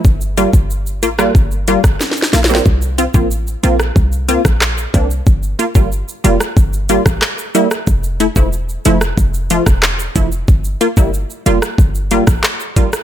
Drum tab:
HH |------x-----------x-----------x-----------x-----|------x-----------x-----------x-----------x-----|------x-----------x-----------x-----------x-----|------x-----------x-----------x-----------x-----|
SH |x--x--x--x--x--x--x--x--x--x--x--x--x--x--x--x--|x--x--x--x--x--x--x--x--x--x--x--x--x--x--x--x--|x--x--x--x--x--x--x--x--x--x--x--x--x--x--x--x--|x--x--x--x--x--x--x--x--x--x--x--x--x--x--x--x--|
CP |------------------------------------------------|------------------------------------x-----------|------------------------------------x-----------|------------------------------------x-----------|
SD |---------------------r-----------r--o-o-o-o-o-o-|---------------------r-----------r--r-----------|---------------------r-----------r--r--------r--|---------------------r-----------r--r-----------|
BD |o--------o--------------o--------o--------------|o--------o--------------o--------o--------o-----|o--------o--------------o--------o--------------|o--------o--------------o--------o--------o-----|

HH |------x-----------x-----------x-----------x-----|
SH |x--x--x--x--x--x--x--x--x--x--x--x--x--x--x--x--|
CP |------------------------------------x-----------|
SD |---------------------r-----------r--r--------r--|
BD |o--------o--------------o--------o--------o-----|